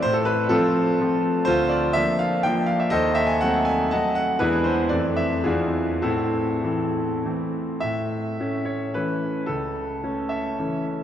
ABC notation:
X:1
M:3/4
L:1/16
Q:1/4=116
K:Am
V:1 name="Grand piano"
c A B2 [CFA]8 | [Fc]2 d2 e2 f2 g2 f e | [A^B^d]2 e ^g ^f a g2 [dfa]2 f2 | [E^GB]2 c2 d2 e2 [EFG]4 |
[CEA]8 z4 | [K:A] e6 c2 B4 | A6 e4 z2 |]
V:2 name="Grand piano"
A,,4 [F,A,]4 [F,A,C]4 | D,,4 [F,_B,D]4 [F,B,D]4 | ^D,,4 [^F,A,^B,]4 [F,A,B,]4 | [E,,E,^G,D]4 [F,,E,A,C]4 [E,,E,B,D]4 |
A,,4 [E,A,C]4 [E,A,C]4 | [K:A] A,,4 [A,C]4 [E,A,C]4 | C,,4 [A,C]4 [E,A,C]4 |]